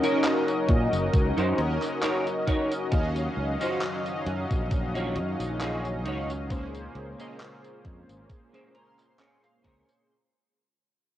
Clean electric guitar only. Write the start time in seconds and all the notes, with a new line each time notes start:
0.02 D#4 F#4 A#4 C#5
0.47 muted clean electric guitar stroke
0.68 muted clean electric guitar stroke
1.37 D#4 F#4 A#4 C5
1.82 muted clean electric guitar stroke
2.02 D#4 F#4 A#4 C#5
2.47 D#4 F#4 A#4 C#5
2.91 muted clean electric guitar stroke
3.16 muted clean electric guitar stroke
3.60 D#4 F4 F#4 C5
4.06 muted clean electric guitar stroke
4.26 muted clean electric guitar stroke
4.94 D#4 F4 F#4 C#5
5.40 muted clean electric guitar stroke
5.60 D#4 F4 F#4 G#4
6.05 D#4 F4 F#4 C#5
6.50 muted clean electric guitar stroke
6.74 muted clean electric guitar stroke
7.19 C#4 G#4 A#4 D#5
7.63 muted clean electric guitar stroke
7.84 muted clean electric guitar stroke
8.53 C#4 G#4 A#4 C5
8.74 A#5
8.98 muted clean electric guitar stroke
9.18 C#4 G#4 A#4 C#5 G#5
9.43 F5
9.63 C#4 G#4 A#4 C5 C#5